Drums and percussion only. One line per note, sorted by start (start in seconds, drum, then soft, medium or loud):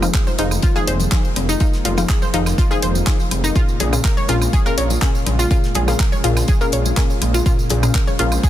0.02 closed hi-hat soft
0.02 tambourine medium
0.02 high woodblock medium
0.14 kick loud
0.14 snare loud
0.14 clap loud
0.14 closed hi-hat medium
0.14 tambourine medium
0.27 tambourine soft
0.27 high conga medium
0.38 closed hi-hat medium
0.38 open hi-hat loud
0.51 tambourine medium
0.51 high woodblock medium
0.62 kick loud
0.62 closed hi-hat medium
0.62 tambourine medium
0.62 high conga medium
0.76 tambourine soft
0.87 closed hi-hat medium
0.87 open hi-hat loud
0.87 cowbell medium
1.00 closed hi-hat soft
1.00 tambourine medium
1.00 high conga medium
1.11 kick loud
1.11 snare loud
1.11 clap loud
1.11 closed hi-hat medium
1.11 tambourine medium
1.25 tambourine soft
1.36 closed hi-hat medium
1.36 open hi-hat loud
1.36 cowbell medium
1.36 high conga medium
1.36 high woodblock medium
1.49 tambourine medium
1.60 kick loud
1.60 closed hi-hat medium
1.60 tambourine soft
1.73 snare soft
1.73 tambourine soft
1.85 closed hi-hat medium
1.85 open hi-hat loud
1.85 cowbell medium
1.85 high conga medium
1.97 snare medium
1.97 tambourine medium
1.97 high woodblock medium
2.09 kick loud
2.09 snare loud
2.09 clap loud
2.09 closed hi-hat medium
2.09 tambourine medium
2.22 tambourine soft
2.22 high conga medium
2.34 closed hi-hat medium
2.34 open hi-hat loud
2.46 snare medium
2.46 tambourine medium
2.46 high woodblock medium
2.58 kick loud
2.58 closed hi-hat medium
2.58 tambourine soft
2.58 high conga medium
2.71 tambourine soft
2.82 closed hi-hat medium
2.82 open hi-hat loud
2.95 tambourine medium
2.95 high conga medium
3.07 kick loud
3.07 snare loud
3.07 clap loud
3.07 closed hi-hat medium
3.07 tambourine medium
3.20 tambourine soft
3.31 closed hi-hat medium
3.31 open hi-hat loud
3.31 high conga medium
3.31 high woodblock medium
3.44 tambourine medium
3.55 kick loud
3.55 closed hi-hat medium
3.55 tambourine soft
3.69 tambourine soft
3.80 closed hi-hat medium
3.80 open hi-hat loud
3.80 cowbell medium
3.80 high conga medium
3.93 closed hi-hat soft
3.93 tambourine medium
3.93 high woodblock medium
4.04 kick loud
4.04 snare loud
4.04 clap loud
4.04 closed hi-hat medium
4.17 tambourine soft
4.17 high conga medium
4.29 closed hi-hat medium
4.29 open hi-hat medium
4.42 tambourine medium
4.42 high woodblock medium
4.53 kick loud
4.53 closed hi-hat medium
4.53 tambourine medium
4.53 high conga medium
4.66 tambourine soft
4.78 closed hi-hat medium
4.78 open hi-hat medium
4.78 cowbell medium
4.90 closed hi-hat soft
4.90 tambourine medium
4.90 high conga medium
5.02 kick loud
5.02 snare loud
5.02 clap loud
5.02 closed hi-hat medium
5.02 tambourine medium
5.15 tambourine soft
5.26 closed hi-hat medium
5.26 open hi-hat loud
5.26 cowbell medium
5.26 high conga medium
5.26 high woodblock medium
5.39 tambourine medium
5.51 kick loud
5.51 closed hi-hat medium
5.51 tambourine medium
5.64 snare soft
5.64 tambourine soft
5.75 closed hi-hat medium
5.75 open hi-hat loud
5.75 cowbell medium
5.75 high conga medium
5.88 snare medium
5.88 tambourine medium
5.88 high woodblock medium
5.99 kick loud
5.99 snare loud
5.99 clap loud
5.99 closed hi-hat medium
5.99 tambourine medium
6.12 tambourine soft
6.12 high conga medium
6.24 closed hi-hat medium
6.24 open hi-hat loud
6.37 snare soft
6.37 tambourine medium
6.37 high woodblock medium
6.48 kick loud
6.48 closed hi-hat medium
6.48 tambourine medium
6.48 high conga medium
6.61 tambourine soft
6.72 closed hi-hat medium
6.72 open hi-hat loud
6.85 tambourine medium
6.85 high conga medium
6.96 kick loud
6.96 snare loud
6.96 clap loud
6.96 closed hi-hat loud
6.96 tambourine medium
7.10 tambourine soft
7.22 closed hi-hat medium
7.22 open hi-hat loud
7.22 high conga medium
7.22 high woodblock medium
7.34 tambourine medium
7.46 kick loud
7.46 closed hi-hat medium
7.46 tambourine medium
7.59 tambourine soft
7.70 closed hi-hat medium
7.70 open hi-hat loud
7.70 cowbell medium
7.70 high conga medium
7.83 closed hi-hat soft
7.83 tambourine medium
7.83 high woodblock medium
7.94 kick loud
7.94 snare loud
7.94 clap loud
7.94 closed hi-hat medium
7.94 tambourine medium
8.07 tambourine soft
8.07 high conga medium
8.19 closed hi-hat medium
8.19 open hi-hat medium
8.32 tambourine medium
8.32 high woodblock medium
8.43 kick loud
8.43 closed hi-hat loud
8.43 tambourine medium
8.43 high conga medium